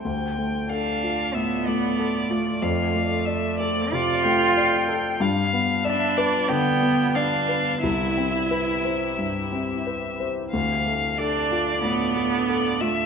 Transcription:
<<
  \new Staff \with { instrumentName = "Violin" } { \time 4/4 \key d \dorian \tempo 4 = 92 g''4 f''4 e''8 d''4. | f''4 e''8 d''8 d''8 g''4. | f''4 e''8 d''8 g''4 f''4 | e''2.~ e''8 r8 |
f''4 d''2 d''8 e''8 | }
  \new Staff \with { instrumentName = "Ambient pad" } { \time 4/4 \key d \dorian << { <f' d''>1~ | <f' d''>1 | <f' d''>1 | <e' g'>1 |
<f' a'>1 | } \\ { a1 | c'1 | b1 | c'1 |
d'1 | } >> }
  \new Staff \with { instrumentName = "Grand piano" } { \time 4/4 \key d \dorian d,8 a8 a'8 f'8 a,8 a8 a'8 f'8 | f,8 a8 d''8 a'8 c8 a8 d''8 a'8 | g,8 b8 d''8 b'8 d8 b8 d''8 b'8 | c,8 c'8 b'8 c''8 g,8 c'8 b'8 c''8 |
d,8 a8 a'8 f'8 a,8 a8 a'8 f'8 | }
  \new Staff \with { instrumentName = "Cello" } { \time 4/4 \key d \dorian r4 d'4 b4. a8 | a2 f'2 | r4 d'4 b4 d'4 | e'2. r4 |
r4 d'4 b4. a8 | }
>>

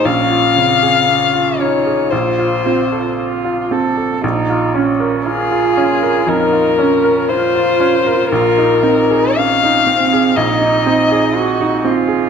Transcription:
<<
  \new Staff \with { instrumentName = "Violin" } { \time 4/4 \key bes \minor \tempo 4 = 59 f''4. des''8 c''4 r4 | r4 aes'4 bes'4 c''4 | bes'4 f''4 ees''4. r8 | }
  \new Staff \with { instrumentName = "Cello" } { \time 4/4 \key bes \minor des'8 c'8 des'8 ees'8 f'4 f'8 a'8 | ees'8 des'8 f'4 ees'8 des'8 f'4 | f'8 ees'8 des'8 c'8 ees'4 ges'8 f'8 | }
  \new Staff \with { instrumentName = "Upright piano" } { \time 4/4 \key bes \minor bes,,16 f'16 des16 aes'8 f'16 des'16 aes'16 bes,,16 f'16 c'16 a'8 f'16 c'16 a'16 | bes,,16 f'16 des'16 bes'8 f'16 des'16 bes'16 f,16 f'16 des'16 bes'8 f'16 des'16 bes'16 | bes,,16 ees'16 c'16 aes'8 ees'16 c'16 aes'16 bes,,16 ees'16 c'16 aes'8 ees'16 c'16 aes'16 | }
>>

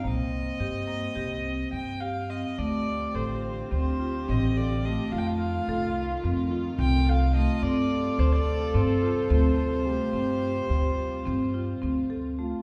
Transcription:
<<
  \new Staff \with { instrumentName = "Violin" } { \time 9/8 \key d \phrygian \tempo 4. = 71 ees''2. g''8 f''8 ees''8 | d''4 c''4 c''4 ees''8 d''8 ees''8 | f''32 g''32 f''4.~ f''16 r4 g''8 f''8 ees''8 | d''4 c''16 d''8. c''2~ c''8~ |
c''2.~ c''8 r4 | }
  \new Staff \with { instrumentName = "French horn" } { \time 9/8 \key d \phrygian c'1 r8 | g'1~ g'8 | f'1 r8 | a'1 g'8~ |
g'2.~ g'8 r8 f'8 | }
  \new Staff \with { instrumentName = "Marimba" } { \time 9/8 \key d \phrygian bes4 g'8 bes8 g'8 c'4 g'8 c'8 | a4 a'4 c'8 f'8 c'8 a'8 a8 | a4 a'4 c'8 f'8 c'8 a'8 a8 | c'4 c''4 c'8 f'8 c'8 a'8 a8 |
c'4 c''4 c'8 f'8 c'8 a'8 a8 | }
  \new Staff \with { instrumentName = "String section" } { \clef bass \time 9/8 \key d \phrygian << { r1 r8 | f'1~ f'8~ | f'1~ f'8~ | f'1~ f'8~ |
f'1~ f'8 | } \\ { r1 r8 | <d c'>1~ <d c'>8 | <ees a>1~ <ees a>8 | <c g>1~ <c g>8~ |
<c g>1~ <c g>8 | } >> }
  \new Staff \with { instrumentName = "Upright bass" } { \clef bass \time 9/8 \key d \phrygian c,4 g,4 c,4 g,4. | d,4 a,,4 d,4 a,,4. | f,4 c,4 f,4 c,4. | g,4 d,4 g,4 d,4. |
g,4 d,4 g,4 d,4. | }
>>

